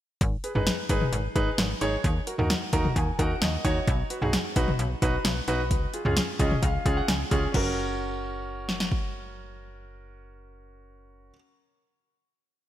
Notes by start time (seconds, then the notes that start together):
0.21 G#1, kick, closed hi-hat
0.44 G#4 B4, closed hi-hat
0.55 G#1 D#4 G#4 B4, mid tom
0.67 snare, closed hi-hat
0.89 G#1 D#4 G#4 B4, kick, closed hi-hat
1.01 mid tom
1.12 G#1, closed hi-hat
1.35 G#1 D#4 G#4 B4, kick, closed hi-hat
1.58 G#1, snare, closed hi-hat
1.81 G#1 D#4 G#4 C#5, closed hi-hat
2.04 D#2, kick, closed hi-hat
2.27 F#4 A#4, closed hi-hat
2.38 D#2 D#4 F#4 A#4, mid tom
2.50 snare, closed hi-hat
2.73 D#2 D#4 F#4 A#4 A#5, kick, closed hi-hat
2.85 mid tom
2.96 D#2 G#5, kick, closed hi-hat
3.19 D#2 D#4 F#4 A#4 F#5, kick, closed hi-hat
3.42 D#2 D#5, snare, closed hi-hat
3.65 D#2 D#4 F#4 C#5, kick, closed hi-hat
3.88 B1, kick, closed hi-hat
4.10 F#4 B4, closed hi-hat
4.22 B1 D#4 F#4 G#4, mid tom
4.33 snare, closed hi-hat
4.56 B1 D#4 F#4 B4, kick, closed hi-hat
4.68 mid tom
4.79 B1, closed hi-hat
5.02 B1 D#4 F#4 B4, kick, closed hi-hat
5.25 B1, snare, closed hi-hat
5.48 B1 D#4 F#4 B4, closed hi-hat
5.71 C#2, kick, closed hi-hat
5.94 F4 G#4, closed hi-hat
6.05 C#2 C#4 F4 G#4, mid tom
6.17 snare, closed hi-hat
6.39 C#2 C#4 F4 G#4 D#5, kick, closed hi-hat
6.51 mid tom
6.62 C#2 F5, kick, closed hi-hat
6.86 C#2 C#4 F4 G#4, kick, closed hi-hat
6.97 F#5
7.08 C#2 G#5, snare, closed hi-hat
7.31 C#2 C#4 F4 G#4, kick, closed hi-hat, cowbell
7.52 F#1 C#4 F#4 A#4, kick, crash
8.69 snare
8.80 snare
8.92 kick